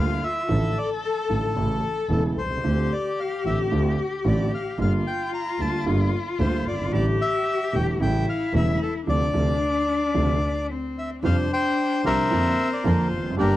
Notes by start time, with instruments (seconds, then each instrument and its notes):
Already playing: double bass D2, grand piano D2 D3 G3 A#3 F4, cello F4, bandoneon F5
0.24 bandoneon E5
0.48 grand piano A1 A2 D3 F3 A3 F4, double bass A1, cello A4
0.78 bandoneon D5
1.04 bandoneon A4
1.29 grand piano A1 A2 D3 F3 A3 F4, double bass A1
1.55 double bass A1, grand piano A1 A2 C#3 E3 A3 E4, cello A4
2.09 double bass E1, grand piano E1 E2 C#3 E3 A3 E4, bandoneon A4
2.36 double bass C2, bandoneon C5
2.44 grand piano B1
2.50 grand piano C2
2.57 grand piano C#2
2.63 grand piano D2 D3 A3 C4 F4, double bass D2, cello G4
2.92 bandoneon D5
3.20 bandoneon F5
3.45 double bass A1, grand piano A1 A2 D3 A3 C4 F4, bandoneon E5
3.71 grand piano D2 D3 A3 C4 F4, double bass D2
4.24 grand piano A1 A2 D3 A3 C4 F4, double bass A1, bandoneon D5
4.54 bandoneon F5
4.78 double bass G1, grand piano G1 G2 D3 G3 A#3 F4, cello F4, bandoneon F5
5.07 bandoneon G5
5.34 bandoneon A#5
5.59 double bass D2, grand piano D2 D3 G3 A#3 F4, bandoneon A5
5.85 double bass G1, grand piano G1 G2 D3 G3 A#3 F4
6.39 grand piano D2 D3 G3 A#3 F4, double bass D2, bandoneon C5
6.65 double bass G1, bandoneon D5
6.72 grand piano F#1
6.79 grand piano G1
6.86 grand piano G#1
6.92 grand piano A1 A2 D3 G3 A3 E4, double bass A1, cello G4, bandoneon D5
7.22 bandoneon E5
7.73 grand piano E1 E2 D3 G3 A3 E4, double bass E1, bandoneon G5
7.99 double bass A1, grand piano A1 A2 C#3 G3 A3 E4, cello E4, bandoneon G5
8.29 bandoneon F5
8.53 double bass E1, grand piano E1 E2 C#3 G3 A3 E4, bandoneon E5
8.82 bandoneon A4
9.07 double bass D2, grand piano C3 D3 F3, cello D4, bandoneon D5
9.34 double bass D2, grand piano C3 D3 F3
10.14 double bass D2, grand piano C3 D3 F3
10.70 cello C4
10.99 bandoneon E5
11.23 double bass F2, grand piano F2 C3 F3 G3 F4, bandoneon G3 C4 F4 C5 F5, cello D4
11.53 bandoneon C5 G5
12.04 grand piano C2 C3 F3 G3 F4, double bass C2, bandoneon G3 C4 F4 A#4 C5 E5
12.30 grand piano F2 D3 F3 A#3 C4 F4, double bass F2, bandoneon A#3 C4 D4, cello C4
12.73 bandoneon D5
12.83 grand piano F2 D3 F3 A#3 C4 F4, double bass F2, bandoneon A#3 C4 D4 C5, cello F4
13.12 double bass F1
13.17 grand piano E2
13.23 grand piano F2
13.30 grand piano F#2
13.37 grand piano G1 G2 D3 G3 A#3 G4, double bass G1, bandoneon G3 A#3 D4 G4 A#4, cello D4